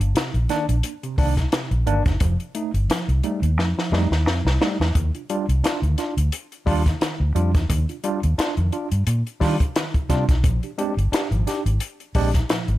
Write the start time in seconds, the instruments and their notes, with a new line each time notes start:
0.00 fingered electric bass G1, closed hi-hat
0.15 tine electric piano C3, muted fingered electric bass stroke, snare, closed hi-hat
0.34 fingered electric bass A#1, closed hi-hat
0.49 tine electric piano D#3 A#3 D4, snare, closed hi-hat
0.69 fingered electric bass A#1, closed hi-hat
0.83 tine electric piano A#3 D4, closed hi-hat
1.03 tine electric piano C3, closed hi-hat
1.18 fingered electric bass C2, tine electric piano D#3 A#3 D4, kick, open hi-hat
1.37 kick, snare, closed hi-hat
1.52 tine electric piano C3, snare, closed hi-hat
1.71 fingered electric bass A#1, closed hi-hat
1.86 fingered electric bass G1, tine electric piano D#3 A#3 D4, closed hi-hat
2.06 fingered electric bass F#1, tine electric piano A#3 D4, kick, snare, closed hi-hat
2.20 fingered electric bass F1, tine electric piano F3, kick, closed hi-hat
2.40 closed hi-hat
2.55 tine electric piano A3 D#4, closed hi-hat
2.74 fingered electric bass G1, closed hi-hat
2.89 tine electric piano F3, muted fingered electric bass stroke, snare, closed hi-hat
3.08 fingered electric bass C2, closed hi-hat
3.23 tine electric piano G3 A3 D#4, closed hi-hat
3.42 fingered electric bass D#2, tine electric piano A3 D#4, closed hi-hat
3.58 fingered electric bass F2, tine electric piano A3 D#4, snare
3.78 tine electric piano F3, snare
3.92 fingered electric bass F2, tine electric piano G3 A3 D#4, snare
4.11 fingered electric bass D#2, snare
4.26 fingered electric bass F2, tine electric piano F3, snare
4.45 fingered electric bass C2, snare
4.61 tine electric piano G3 A3 D#4, snare
4.80 fingered electric bass E2, snare
4.95 fingered electric bass D#2, tine electric piano D#3, kick, closed hi-hat
5.15 tine electric piano D4 F4, closed hi-hat
5.30 tine electric piano G3 D4 F4, closed hi-hat
5.49 fingered electric bass C2, closed hi-hat
5.63 tine electric piano D4 F4, muted fingered electric bass stroke, snare, closed hi-hat
5.82 fingered electric bass D2, tine electric piano D#3, closed hi-hat
5.98 tine electric piano D4 F4, snare, closed hi-hat
6.17 fingered electric bass D2, closed hi-hat
6.32 closed hi-hat
6.52 closed hi-hat
6.66 fingered electric bass D#2, tine electric piano G3 D4 F4, kick, open hi-hat
6.86 kick, snare, closed hi-hat
7.01 tine electric piano D#3, snare, closed hi-hat
7.20 fingered electric bass D2
7.35 fingered electric bass F2, tine electric piano G3 D4 F4, closed hi-hat
7.54 fingered electric bass E2, tine electric piano D4 F4, kick, snare, closed hi-hat
7.69 fingered electric bass D#2, tine electric piano D#3, kick, closed hi-hat
7.89 tine electric piano D4 F4, closed hi-hat
8.04 tine electric piano G3 D4 F4, closed hi-hat
8.23 fingered electric bass D#2, closed hi-hat
8.38 tine electric piano D4 F4, muted fingered electric bass stroke, snare, closed hi-hat
8.57 fingered electric bass F2, tine electric piano D#3, closed hi-hat
8.72 tine electric piano D4 F4, closed hi-hat
8.91 fingered electric bass G2, closed hi-hat
9.07 fingered electric bass A#2, closed hi-hat
9.27 closed hi-hat
9.41 fingered electric bass D#3, tine electric piano G3 D4 F4, kick, snare, open hi-hat
9.60 kick, closed hi-hat
9.76 tine electric piano D#3, snare, closed hi-hat
9.94 kick, closed hi-hat
10.10 fingered electric bass C3, tine electric piano G3 D4 F4, kick, snare, closed hi-hat
10.29 fingered electric bass B1, tine electric piano F4, kick, snare, closed hi-hat
10.44 fingered electric bass A#1, tine electric piano A#2 F3, kick, closed hi-hat
10.63 tine electric piano D4 G4, closed hi-hat
10.78 tine electric piano G#3 C4 D4 G4, closed hi-hat
10.97 fingered electric bass G1, closed hi-hat
11.12 tine electric piano D4 G4, muted fingered electric bass stroke, snare, closed hi-hat
11.31 fingered electric bass G#1, tine electric piano A#2 F3, closed hi-hat
11.47 tine electric piano D4 G4, snare, closed hi-hat
11.66 fingered electric bass G#1, closed hi-hat
11.80 closed hi-hat
12.00 closed hi-hat
12.15 fingered electric bass A#1, tine electric piano G#3 C4 D4 G4, kick, open hi-hat
12.34 kick, snare, closed hi-hat
12.49 tine electric piano A#2 F3, snare, closed hi-hat
12.68 fingered electric bass G#1, closed hi-hat